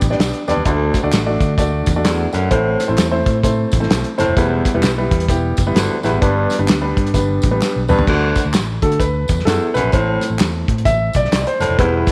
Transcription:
0.01 fingered electric bass A1, kick, closed hi-hat, tambourine, muted conga, low conga
0.10 grand piano B3 D4 G4 D5, snare
0.19 fingered electric bass B1, snare, clap, closed hi-hat, tambourine, high conga
0.34 closed hi-hat
0.48 fingered electric bass E2, baritone saxophone G2, grand piano B3 D4 G4 D5, snare, closed hi-hat, tambourine, high conga
0.56 fingered electric bass D#2
0.65 baritone saxophone D2, fingered electric bass D2, grand piano A3 D4 F#4 D5, kick, closed hi-hat, tambourine, muted conga
0.94 kick, closed hi-hat, tambourine, muted conga
1.03 fingered electric bass D2, grand piano A3 D4 F#4 D5
1.12 fingered electric bass A1, snare, clap, closed hi-hat, tambourine, high conga
1.26 grand piano A3 D4 F#4 D5
1.41 fingered electric bass D3, kick, closed hi-hat, tambourine
1.58 fingered electric bass D2, grand piano A3 D4 F#4 D5, kick, closed hi-hat, tambourine, muted conga
1.86 fingered electric bass E2, kick, closed hi-hat, tambourine, muted conga, low conga
1.96 grand piano A3 D4 F#4 D5
2.05 baritone saxophone E2, grand piano D5, snare, clap, closed hi-hat, tambourine, high conga
2.33 baritone saxophone F#2, fingered electric bass F#2, grand piano A4 F#5, closed hi-hat, tambourine, high conga
2.51 fingered electric bass A1, baritone saxophone A2, grand piano A3 C4 E4 C5, kick, closed hi-hat, muted conga
2.80 closed hi-hat, tambourine, muted conga
2.88 fingered electric bass A1, grand piano A3 C4 E4 C5
2.97 fingered electric bass E2, snare, clap, closed hi-hat, tambourine, high conga
3.11 grand piano A3 C4 E4 C5
3.26 fingered electric bass A2, kick, closed hi-hat, tambourine
3.43 grand piano A3 C4 E4 C5, kick, closed hi-hat, tambourine, muted conga, low conga
3.72 fingered electric bass A1, kick, closed hi-hat, tambourine, muted conga, low conga
3.80 grand piano A3 C4 E4 C5, snare
3.90 fingered electric bass B1, snare, clap, closed hi-hat, tambourine, high conga
4.04 closed hi-hat
4.18 fingered electric bass F#1, baritone saxophone A2, grand piano A3 C4 E4 C5, closed hi-hat, tambourine, high conga
4.28 fingered electric bass F1
4.37 fingered electric bass E1, baritone saxophone E2, grand piano G3 B3 E4 B4, kick, closed hi-hat, tambourine, muted conga
4.65 kick, closed hi-hat, tambourine, muted conga
4.74 fingered electric bass E1, grand piano G3 B3 E4 B4
4.82 fingered electric bass B1, snare, clap, closed hi-hat, tambourine, high conga
4.98 grand piano G3 B3 E4 B4
5.11 fingered electric bass E2, kick, closed hi-hat, tambourine
5.20 closed hi-hat
5.28 fingered electric bass E1, grand piano G3 B3 E4 G4, kick, closed hi-hat, tambourine
5.57 fingered electric bass F#1, kick, closed hi-hat, tambourine, muted conga, low conga
5.66 grand piano G3 B3 E4 B4
5.75 fingered electric bass G1, baritone saxophone D2, snare, clap, closed hi-hat, tambourine, high conga
6.03 fingered electric bass A1, baritone saxophone E2, grand piano G3 B3 E4 B4, snare, closed hi-hat, tambourine, high conga
6.13 fingered electric bass G#1
6.21 fingered electric bass G1, baritone saxophone G2, grand piano G3 B3 D4 B4, kick, closed hi-hat, tambourine, muted conga
6.50 closed hi-hat, tambourine, muted conga
6.59 fingered electric bass G1, grand piano G3 B3 D4 B4
6.68 fingered electric bass D2, snare, clap, closed hi-hat, tambourine, high conga
6.81 grand piano G3 B3 D4 B4
6.97 fingered electric bass G2, kick, closed hi-hat
7.07 closed hi-hat
7.14 fingered electric bass G1, grand piano G3 B3 D4 B4, kick, closed hi-hat, tambourine, muted conga, low conga
7.42 fingered electric bass A1, kick, closed hi-hat, tambourine, muted conga, low conga
7.51 grand piano G3 B3 D4 B4
7.61 snare, clap, tambourine, high conga
7.76 fingered electric bass B1, high conga
7.88 fingered electric bass E2, baritone saxophone G2, grand piano G3 B3 D4 B4, mid tom, tambourine, high conga
7.99 fingered electric bass D#2, floor tom
8.07 fingered electric bass D2, baritone saxophone D2, grand piano A3 D4 F#4, kick, crash, muted conga
8.35 kick, closed hi-hat, tambourine, muted conga
8.45 fingered electric bass D2
8.53 fingered electric bass A1, snare, clap, closed hi-hat, tambourine, high conga
8.82 fingered electric bass D3, grand piano A3 D4 F#4 A4, kick, closed hi-hat, tambourine
8.92 closed hi-hat
8.99 fingered electric bass D2, grand piano B4, kick, closed hi-hat, tambourine, muted conga
9.28 fingered electric bass E2, kick, closed hi-hat, tambourine, muted conga, low conga
9.40 snare
9.45 baritone saxophone E2, fingered electric bass F#2, grand piano A4, snare, clap, closed hi-hat, tambourine, high conga
9.74 fingered electric bass B1, baritone saxophone F#2, grand piano B4, snare, closed hi-hat, tambourine, high conga
9.84 fingered electric bass A#1
9.92 fingered electric bass A1, baritone saxophone A2, grand piano A3 C4 E4 C5, kick, closed hi-hat, tambourine, muted conga
10.21 closed hi-hat, tambourine, muted conga
10.30 fingered electric bass A1
10.39 fingered electric bass E2, snare, clap, closed hi-hat, tambourine, high conga
10.68 fingered electric bass A2, kick, closed hi-hat
10.78 closed hi-hat
10.85 fingered electric bass A1, grand piano E5, kick, closed hi-hat, tambourine, muted conga, low conga
11.13 fingered electric bass B1, grand piano D5, kick, closed hi-hat, tambourine, muted conga, low conga
11.25 snare
11.31 fingered electric bass C2, snare, clap, closed hi-hat, tambourine, high conga
11.42 grand piano D5
11.47 grand piano C5, closed hi-hat
11.60 fingered electric bass F#1, baritone saxophone A2, closed hi-hat, tambourine, high conga
11.69 fingered electric bass F1
11.78 fingered electric bass E1, baritone saxophone E2, grand piano G3 B3 E4 B4, kick, closed hi-hat, muted conga
12.07 kick, closed hi-hat, tambourine, muted conga

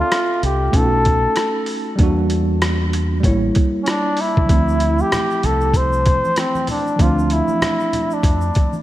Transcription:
Already playing: tine electric piano C4 F4 A4 E5
0.00 flugelhorn F4
0.12 cross-stick, closed hi-hat
0.43 fingered electric bass C2, flugelhorn G4, closed hi-hat
0.71 fingered electric bass B1, tine electric piano A3 C#4, kick, closed hi-hat
0.76 tine electric piano D#4 F4, flugelhorn A4
0.85 tine electric piano F#4
1.05 kick, closed hi-hat
1.36 cross-stick, closed hi-hat
1.66 open hi-hat
1.96 fingered electric bass E2, tine electric piano G3 A#3, kick, closed hi-hat
2.01 tine electric piano D4 F#4
2.30 closed hi-hat
2.62 cross-stick, closed hi-hat
2.93 closed hi-hat
3.20 fingered electric bass A1, tine electric piano G3 A#3, kick
3.24 tine electric piano E4 C#5, closed hi-hat
3.55 kick, closed hi-hat
3.83 flugelhorn C#4, closed hi-hat
3.88 flugelhorn D4, cross-stick
4.17 open hi-hat
4.21 flugelhorn E4
4.37 fingered electric bass C#2, kick
4.46 fingered electric bass D2, tine electric piano F3 A3, kick, closed hi-hat, shaker
4.51 tine electric piano C4 E4
4.68 shaker
4.80 closed hi-hat, shaker
4.99 flugelhorn G4, shaker
5.12 cross-stick, closed hi-hat, high conga, low conga, shaker
5.31 shaker
5.43 fingered electric bass C2, flugelhorn A4, closed hi-hat, low conga, shaker
5.61 shaker
5.74 flugelhorn C5, kick, closed hi-hat, shaker
5.93 shaker
6.06 kick, closed hi-hat, shaker
6.24 high conga, shaker
6.36 flugelhorn C4, cross-stick, closed hi-hat, shaker
6.55 high conga, shaker
6.67 flugelhorn D4, open hi-hat, low conga, shaker
6.87 shaker
6.96 fingered electric bass D2, tine electric piano F3 A3, kick, closed hi-hat
7.00 tine electric piano C4 D4, flugelhorn F4, shaker
7.19 shaker
7.30 flugelhorn E4, closed hi-hat, shaker
7.48 high conga, shaker
7.62 cross-stick, closed hi-hat, high conga, low conga, shaker
7.80 shaker
7.93 closed hi-hat, low conga, shaker
8.11 flugelhorn D4, shaker
8.23 fingered electric bass F2, kick, closed hi-hat, shaker
8.41 shaker
8.54 kick, closed hi-hat, shaker
8.73 high conga, shaker

